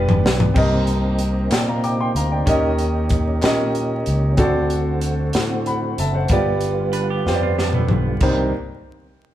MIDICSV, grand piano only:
0, 0, Header, 1, 2, 480
1, 0, Start_track
1, 0, Key_signature, -3, "minor"
1, 0, Tempo, 638298
1, 420, Time_signature, 6, 3, 24, 8
1, 7025, End_track
2, 0, Start_track
2, 0, Title_t, "Grand piano"
2, 0, Program_c, 0, 0
2, 0, Control_c, 0, 64, 127
2, 0, Note_on_c, 0, 43, 67
2, 0, Note_on_c, 0, 59, 86
2, 0, Note_on_c, 0, 62, 76
2, 0, Note_on_c, 0, 65, 79
2, 0, Note_on_c, 0, 67, 84
2, 0, Note_on_c, 0, 71, 99
2, 0, Note_on_c, 0, 74, 94
2, 328, Note_off_c, 0, 59, 0
2, 331, Note_off_c, 0, 62, 0
2, 332, Note_off_c, 0, 65, 0
2, 336, Note_off_c, 0, 67, 0
2, 339, Note_off_c, 0, 71, 0
2, 407, Note_on_c, 0, 60, 79
2, 416, Note_on_c, 0, 67, 73
2, 419, Note_on_c, 0, 48, 64
2, 427, Note_on_c, 0, 70, 74
2, 430, Control_c, 0, 64, 0
2, 433, Note_on_c, 0, 75, 89
2, 435, Note_off_c, 0, 43, 0
2, 435, Note_off_c, 0, 74, 0
2, 557, Control_c, 0, 64, 127
2, 1043, Note_off_c, 0, 60, 0
2, 1047, Note_off_c, 0, 67, 0
2, 1053, Note_off_c, 0, 70, 0
2, 1056, Note_off_c, 0, 75, 0
2, 1108, Note_off_c, 0, 48, 0
2, 1142, Note_on_c, 0, 79, 54
2, 1146, Note_on_c, 0, 74, 48
2, 1254, Note_off_c, 0, 79, 0
2, 1256, Note_off_c, 0, 74, 0
2, 1269, Note_on_c, 0, 82, 55
2, 1271, Note_on_c, 0, 77, 46
2, 1378, Note_off_c, 0, 82, 0
2, 1379, Note_off_c, 0, 77, 0
2, 1382, Note_on_c, 0, 86, 60
2, 1385, Note_on_c, 0, 79, 51
2, 1494, Note_off_c, 0, 86, 0
2, 1496, Note_off_c, 0, 79, 0
2, 1508, Note_on_c, 0, 84, 60
2, 1510, Note_on_c, 0, 79, 52
2, 1617, Note_off_c, 0, 84, 0
2, 1618, Note_off_c, 0, 79, 0
2, 1626, Note_on_c, 0, 82, 60
2, 1630, Note_on_c, 0, 77, 46
2, 1736, Note_off_c, 0, 82, 0
2, 1738, Note_off_c, 0, 77, 0
2, 1742, Note_on_c, 0, 79, 51
2, 1747, Note_on_c, 0, 74, 44
2, 1848, Note_on_c, 0, 61, 81
2, 1856, Note_on_c, 0, 67, 75
2, 1860, Note_on_c, 0, 51, 63
2, 1861, Note_on_c, 0, 70, 74
2, 1869, Control_c, 0, 64, 0
2, 1872, Note_on_c, 0, 75, 88
2, 1968, Note_off_c, 0, 79, 0
2, 1970, Note_off_c, 0, 74, 0
2, 2001, Control_c, 0, 64, 127
2, 2483, Note_off_c, 0, 61, 0
2, 2487, Note_off_c, 0, 67, 0
2, 2490, Note_off_c, 0, 70, 0
2, 2496, Note_off_c, 0, 75, 0
2, 2548, Note_off_c, 0, 51, 0
2, 2571, Note_on_c, 0, 61, 76
2, 2579, Note_on_c, 0, 67, 66
2, 2583, Note_on_c, 0, 70, 64
2, 2592, Note_on_c, 0, 75, 83
2, 3205, Note_off_c, 0, 61, 0
2, 3209, Note_off_c, 0, 67, 0
2, 3211, Note_off_c, 0, 70, 0
2, 3215, Note_off_c, 0, 75, 0
2, 3287, Note_on_c, 0, 60, 80
2, 3293, Note_on_c, 0, 66, 77
2, 3298, Note_on_c, 0, 50, 68
2, 3301, Note_on_c, 0, 69, 76
2, 3306, Control_c, 0, 64, 0
2, 3310, Note_on_c, 0, 74, 95
2, 3421, Control_c, 0, 64, 127
2, 3923, Note_off_c, 0, 60, 0
2, 3926, Note_off_c, 0, 66, 0
2, 3930, Note_off_c, 0, 69, 0
2, 3935, Note_off_c, 0, 74, 0
2, 3988, Note_off_c, 0, 50, 0
2, 4263, Note_on_c, 0, 83, 57
2, 4271, Note_on_c, 0, 78, 49
2, 4488, Note_off_c, 0, 83, 0
2, 4493, Note_off_c, 0, 78, 0
2, 4507, Note_on_c, 0, 81, 63
2, 4510, Note_on_c, 0, 76, 52
2, 4616, Note_off_c, 0, 81, 0
2, 4618, Note_off_c, 0, 76, 0
2, 4621, Note_on_c, 0, 78, 53
2, 4626, Note_on_c, 0, 72, 44
2, 4741, Note_on_c, 0, 59, 81
2, 4743, Note_on_c, 0, 65, 75
2, 4747, Note_on_c, 0, 43, 66
2, 4748, Control_c, 0, 64, 0
2, 4755, Note_on_c, 0, 67, 76
2, 4760, Note_on_c, 0, 74, 92
2, 4847, Note_off_c, 0, 78, 0
2, 4850, Note_off_c, 0, 72, 0
2, 4901, Control_c, 0, 64, 127
2, 5370, Note_off_c, 0, 59, 0
2, 5372, Note_off_c, 0, 65, 0
2, 5377, Note_off_c, 0, 67, 0
2, 5380, Note_off_c, 0, 74, 0
2, 5432, Note_off_c, 0, 43, 0
2, 5458, Note_on_c, 0, 59, 66
2, 5465, Note_on_c, 0, 65, 65
2, 5473, Note_on_c, 0, 67, 58
2, 5478, Note_on_c, 0, 72, 59
2, 5517, Note_off_c, 0, 72, 0
2, 5529, Note_on_c, 0, 74, 74
2, 6089, Note_off_c, 0, 59, 0
2, 6092, Note_off_c, 0, 65, 0
2, 6096, Note_off_c, 0, 67, 0
2, 6124, Note_off_c, 0, 74, 0
2, 6185, Note_on_c, 0, 36, 64
2, 6186, Note_on_c, 0, 72, 70
2, 6187, Control_c, 0, 64, 0
2, 6188, Note_on_c, 0, 58, 69
2, 6188, Note_on_c, 0, 63, 61
2, 6189, Note_on_c, 0, 67, 58
2, 6405, Note_off_c, 0, 36, 0
2, 6405, Note_off_c, 0, 72, 0
2, 6406, Note_off_c, 0, 63, 0
2, 6407, Note_off_c, 0, 58, 0
2, 6407, Note_off_c, 0, 67, 0
2, 7025, End_track
0, 0, End_of_file